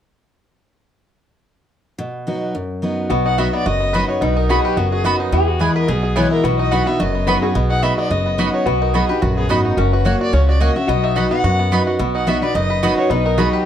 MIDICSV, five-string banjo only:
0, 0, Header, 1, 2, 480
1, 0, Start_track
1, 0, Key_signature, 5, "major"
1, 0, Tempo, 278035
1, 3429, Time_signature, 4, 2, 24, 8
1, 23574, End_track
2, 0, Start_track
2, 0, Title_t, "Five-string banjo"
2, 0, Program_c, 0, 105
2, 5360, Note_on_c, 0, 59, 69
2, 5623, Note_on_c, 0, 63, 54
2, 5841, Note_on_c, 0, 66, 67
2, 6094, Note_off_c, 0, 59, 0
2, 6101, Note_on_c, 0, 59, 72
2, 6276, Note_off_c, 0, 63, 0
2, 6297, Note_off_c, 0, 66, 0
2, 6318, Note_on_c, 0, 66, 71
2, 6560, Note_off_c, 0, 59, 0
2, 6567, Note_on_c, 0, 59, 45
2, 6788, Note_on_c, 0, 71, 53
2, 7008, Note_off_c, 0, 66, 0
2, 7055, Note_on_c, 0, 66, 51
2, 7263, Note_off_c, 0, 59, 0
2, 7270, Note_on_c, 0, 59, 65
2, 7534, Note_on_c, 0, 63, 60
2, 7713, Note_off_c, 0, 66, 0
2, 7763, Note_on_c, 0, 66, 66
2, 8018, Note_off_c, 0, 71, 0
2, 8025, Note_on_c, 0, 71, 57
2, 8193, Note_off_c, 0, 63, 0
2, 8227, Note_off_c, 0, 59, 0
2, 8234, Note_on_c, 0, 59, 67
2, 8452, Note_off_c, 0, 66, 0
2, 8499, Note_on_c, 0, 66, 49
2, 8706, Note_off_c, 0, 59, 0
2, 8713, Note_on_c, 0, 59, 71
2, 8976, Note_on_c, 0, 63, 57
2, 9156, Note_off_c, 0, 66, 0
2, 9194, Note_off_c, 0, 59, 0
2, 9198, Note_off_c, 0, 63, 0
2, 9201, Note_on_c, 0, 59, 76
2, 9681, Note_on_c, 0, 68, 68
2, 9932, Note_off_c, 0, 71, 0
2, 9939, Note_on_c, 0, 71, 61
2, 10145, Note_off_c, 0, 59, 0
2, 10152, Note_on_c, 0, 59, 72
2, 10371, Note_off_c, 0, 68, 0
2, 10413, Note_on_c, 0, 68, 47
2, 10624, Note_off_c, 0, 59, 0
2, 10631, Note_on_c, 0, 59, 68
2, 10889, Note_on_c, 0, 64, 59
2, 11073, Note_off_c, 0, 68, 0
2, 11105, Note_off_c, 0, 59, 0
2, 11112, Note_on_c, 0, 59, 76
2, 11114, Note_off_c, 0, 64, 0
2, 11380, Note_on_c, 0, 63, 62
2, 11595, Note_on_c, 0, 66, 62
2, 11843, Note_off_c, 0, 59, 0
2, 11850, Note_on_c, 0, 59, 73
2, 12072, Note_off_c, 0, 66, 0
2, 12079, Note_on_c, 0, 66, 59
2, 12332, Note_off_c, 0, 59, 0
2, 12339, Note_on_c, 0, 59, 52
2, 12356, Note_off_c, 0, 71, 0
2, 12559, Note_on_c, 0, 71, 53
2, 12818, Note_off_c, 0, 66, 0
2, 12825, Note_on_c, 0, 66, 55
2, 13034, Note_off_c, 0, 59, 0
2, 13041, Note_on_c, 0, 59, 74
2, 13293, Note_off_c, 0, 63, 0
2, 13300, Note_on_c, 0, 63, 57
2, 13506, Note_off_c, 0, 66, 0
2, 13513, Note_on_c, 0, 66, 58
2, 13730, Note_off_c, 0, 59, 0
2, 13779, Note_on_c, 0, 59, 76
2, 13955, Note_off_c, 0, 63, 0
2, 13993, Note_off_c, 0, 66, 0
2, 14000, Note_on_c, 0, 66, 60
2, 14241, Note_off_c, 0, 59, 0
2, 14261, Note_on_c, 0, 59, 52
2, 14475, Note_off_c, 0, 71, 0
2, 14482, Note_on_c, 0, 71, 55
2, 14733, Note_off_c, 0, 66, 0
2, 14740, Note_on_c, 0, 66, 50
2, 14915, Note_off_c, 0, 59, 0
2, 14953, Note_on_c, 0, 59, 69
2, 15169, Note_off_c, 0, 71, 0
2, 15223, Note_on_c, 0, 63, 61
2, 15434, Note_off_c, 0, 66, 0
2, 15441, Note_on_c, 0, 66, 63
2, 15644, Note_off_c, 0, 59, 0
2, 15696, Note_on_c, 0, 71, 58
2, 15875, Note_off_c, 0, 63, 0
2, 15910, Note_off_c, 0, 66, 0
2, 15917, Note_on_c, 0, 66, 66
2, 16186, Note_on_c, 0, 59, 53
2, 16351, Note_off_c, 0, 71, 0
2, 16406, Note_on_c, 0, 63, 57
2, 16652, Note_off_c, 0, 66, 0
2, 16659, Note_on_c, 0, 66, 54
2, 16836, Note_off_c, 0, 59, 0
2, 16880, Note_off_c, 0, 63, 0
2, 16885, Note_on_c, 0, 61, 76
2, 17146, Note_off_c, 0, 66, 0
2, 17146, Note_on_c, 0, 66, 62
2, 17365, Note_off_c, 0, 66, 0
2, 17365, Note_on_c, 0, 66, 60
2, 17568, Note_off_c, 0, 61, 0
2, 17619, Note_off_c, 0, 66, 0
2, 17626, Note_on_c, 0, 66, 65
2, 17843, Note_on_c, 0, 61, 71
2, 18099, Note_off_c, 0, 66, 0
2, 18106, Note_on_c, 0, 66, 56
2, 18313, Note_off_c, 0, 66, 0
2, 18320, Note_on_c, 0, 66, 51
2, 18526, Note_off_c, 0, 61, 0
2, 18574, Note_off_c, 0, 66, 0
2, 18581, Note_on_c, 0, 66, 55
2, 18788, Note_on_c, 0, 59, 71
2, 19053, Note_on_c, 0, 63, 63
2, 19265, Note_off_c, 0, 66, 0
2, 19272, Note_on_c, 0, 66, 67
2, 19478, Note_off_c, 0, 59, 0
2, 19529, Note_on_c, 0, 59, 67
2, 19706, Note_off_c, 0, 63, 0
2, 19730, Note_off_c, 0, 66, 0
2, 19751, Note_on_c, 0, 66, 71
2, 19992, Note_off_c, 0, 59, 0
2, 20013, Note_on_c, 0, 59, 54
2, 20233, Note_on_c, 0, 71, 56
2, 20438, Note_off_c, 0, 66, 0
2, 20491, Note_on_c, 0, 66, 51
2, 20665, Note_off_c, 0, 59, 0
2, 20708, Note_off_c, 0, 66, 0
2, 20709, Note_off_c, 0, 71, 0
2, 20711, Note_on_c, 0, 59, 72
2, 20972, Note_on_c, 0, 63, 61
2, 21193, Note_on_c, 0, 66, 66
2, 21449, Note_on_c, 0, 71, 58
2, 21623, Note_off_c, 0, 63, 0
2, 21669, Note_on_c, 0, 63, 66
2, 21877, Note_off_c, 0, 66, 0
2, 21919, Note_off_c, 0, 71, 0
2, 21926, Note_on_c, 0, 71, 55
2, 22138, Note_off_c, 0, 59, 0
2, 22145, Note_on_c, 0, 59, 62
2, 22355, Note_off_c, 0, 63, 0
2, 22404, Note_on_c, 0, 66, 60
2, 22608, Note_off_c, 0, 59, 0
2, 22615, Note_on_c, 0, 59, 72
2, 22887, Note_on_c, 0, 63, 67
2, 23057, Note_off_c, 0, 66, 0
2, 23101, Note_on_c, 0, 66, 68
2, 23355, Note_off_c, 0, 71, 0
2, 23362, Note_on_c, 0, 71, 59
2, 23539, Note_off_c, 0, 63, 0
2, 23574, Note_off_c, 0, 59, 0
2, 23574, Note_off_c, 0, 66, 0
2, 23574, Note_off_c, 0, 71, 0
2, 23574, End_track
0, 0, End_of_file